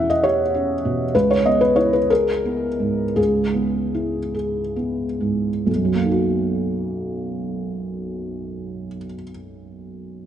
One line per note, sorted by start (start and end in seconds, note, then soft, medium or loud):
0.00 1.11 E2 soft
0.00 0.85 B2 soft
0.00 0.11 C#4 soft
0.00 0.42 E4 soft
0.00 1.16 E5 medium
0.00 1.16 F#5 medium
0.10 0.23 D#5 medium
0.24 0.72 G4 soft
0.24 1.15 C#5 medium
0.54 1.02 C#4 soft
0.85 1.15 B2 soft
1.15 3.14 C#2 medium
1.15 1.30 B4 medium
1.31 1.46 C#5 medium
1.46 1.96 B3 soft
1.46 1.61 D#5 medium
1.61 1.77 B4 medium
1.76 2.29 E4 soft
1.76 1.92 C#5 medium
1.93 2.09 B4 medium
2.10 2.66 G#4 soft
2.10 3.18 A#4 medium
2.45 3.03 B3 soft
2.80 3.40 G#2 soft
3.16 5.63 C#2 soft
3.16 4.33 G#4 medium
3.54 4.19 B3 soft
3.94 4.60 E4 soft
4.34 5.04 G#4 soft
4.76 5.49 B3 soft
5.21 5.67 G#2 soft
5.66 8.86 B1 soft
5.76 8.95 F#2 soft
5.85 9.04 F#3 soft
5.93 9.13 A#3 soft
6.03 9.23 D#4 soft
6.11 9.31 F#4 soft